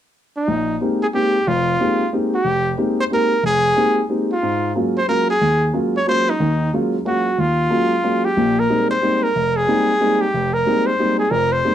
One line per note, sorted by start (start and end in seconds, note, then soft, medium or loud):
0.37 0.78 D#4 medium
0.48 0.76 A#1 medium
0.81 1.02 G#3 medium
0.81 1.03 A#3 soft
0.81 1.03 C4 soft
0.81 1.03 D#4 soft
0.81 1.03 G4 medium
1.02 1.07 G#4 medium
1.14 1.35 G#3 soft
1.14 1.35 A#3 soft
1.14 1.36 C4 soft
1.14 1.36 D#4 soft
1.14 1.49 G4 medium
1.14 1.36 G4 soft
1.47 1.75 F1 medium
1.47 1.75 F2 medium
1.47 2.12 F4 medium
1.80 2.01 G#3 soft
1.80 2.01 A#3 soft
1.80 2.02 C4 soft
1.80 2.02 D#4 soft
1.80 2.02 G4 medium
2.13 2.34 G#3 soft
2.13 2.34 A#3 soft
2.13 2.34 C4 soft
2.13 2.34 D#4 soft
2.13 2.35 G4 medium
2.35 2.75 G4 medium
2.45 2.73 F1 medium
2.78 2.99 G#3 soft
2.78 3.00 A#3 soft
2.78 2.99 C4 soft
2.78 3.00 D#4 soft
2.78 3.00 G4 medium
3.00 3.05 C5 medium
3.10 3.32 G#3 soft
3.10 3.32 A#3 soft
3.10 3.32 C4 soft
3.10 3.33 D#4 soft
3.10 3.33 G4 medium
3.10 3.42 A#4 medium
3.43 3.72 F1 medium
3.43 4.06 G#4 medium
3.76 3.98 G#3 soft
3.76 3.98 A#3 soft
3.76 3.98 C4 soft
3.76 3.98 D#4 soft
3.76 3.99 G4 medium
4.09 4.31 G#3 soft
4.09 4.31 A#3 soft
4.09 4.31 C4 soft
4.09 4.31 D#4 soft
4.09 4.31 G4 soft
4.32 4.73 F4 medium
4.43 4.71 G#2 medium
4.76 4.97 F#3 soft
4.76 4.97 G#3 soft
4.76 4.97 A#3 soft
4.76 4.97 C#4 soft
4.76 4.98 F4 medium
4.98 5.08 C5 medium
5.08 5.30 F#3 soft
5.08 5.30 G#3 soft
5.08 5.30 A#3 soft
5.08 5.30 C#4 soft
5.08 5.30 F4 medium
5.08 5.28 A#4 medium
5.30 5.71 G#4 medium
5.42 5.69 D#2 medium
5.73 5.95 F#3 medium
5.73 5.96 G#3 soft
5.73 5.96 A#3 soft
5.73 5.96 C#4 soft
5.73 5.96 F4 medium
5.97 6.07 C#5 medium
6.07 6.29 F#3 soft
6.07 6.29 G#3 soft
6.07 6.29 A#3 soft
6.07 6.29 C#4 soft
6.07 6.29 F4 medium
6.07 6.31 C5 loud
6.30 6.73 D#4 medium
6.40 6.68 D#2 medium
6.40 6.68 D#3 medium
6.74 6.95 F#3 soft
6.74 6.95 G#3 soft
6.74 6.95 A#3 soft
6.74 6.95 C#4 soft
6.74 6.95 F4 medium
7.05 7.27 F#3 soft
7.05 7.27 G#3 soft
7.05 7.27 A#3 soft
7.05 7.27 C#4 soft
7.05 7.27 F4 soft
7.05 7.41 F#4 medium
7.38 7.66 D#2 medium
7.38 8.26 F4 medium
7.70 7.92 F#3 soft
7.70 7.93 G#3 soft
7.70 7.93 A#3 soft
7.70 7.93 C#4 soft
7.70 7.93 F4 medium
8.04 8.26 F#3 soft
8.04 8.26 G#3 soft
8.04 8.26 A#3 soft
8.04 8.26 C#4 soft
8.04 8.26 F4 soft
8.25 8.61 G4 medium
8.37 8.65 A#1 medium
8.37 8.65 A#2 medium
8.59 8.90 A#4 medium
8.69 8.91 G3 soft
8.69 8.91 G#3 soft
8.69 8.92 A#3 soft
8.69 8.92 C4 soft
8.69 8.92 D#4 medium
8.91 9.25 C5 medium
9.02 9.24 G3 soft
9.02 9.24 G#3 soft
9.02 9.24 A#3 soft
9.02 9.24 C4 soft
9.02 9.24 D#4 medium
9.23 9.58 A#4 medium
9.36 9.64 F1 medium
9.57 10.22 G#4 medium
9.67 9.90 G3 soft
9.67 9.90 G#3 soft
9.67 9.90 A#3 soft
9.67 9.90 C4 soft
9.67 9.90 D#4 medium
10.01 10.23 G3 soft
10.01 10.23 G#3 soft
10.01 10.23 A#3 soft
10.01 10.23 C4 soft
10.01 10.23 D#4 medium
10.21 10.55 G4 medium
10.34 10.62 F1 medium
10.53 10.88 A#4 medium
10.66 10.88 G3 medium
10.66 10.88 G#3 soft
10.66 10.89 A#3 soft
10.66 10.88 C4 soft
10.66 10.89 D#4 medium
10.86 11.18 C5 medium
10.99 11.21 G3 soft
10.99 11.21 G#3 soft
10.99 11.21 A#3 soft
10.99 11.21 C4 soft
10.99 11.21 D#4 medium
11.19 11.32 G#4 medium
11.31 11.60 F1 medium
11.31 11.60 F2 medium
11.31 11.54 A#4 medium
11.52 11.75 C5 medium
11.64 11.75 G3 medium
11.64 11.75 G#3 soft
11.64 11.75 A#3 soft
11.64 11.75 C4 soft
11.64 11.75 D#4 medium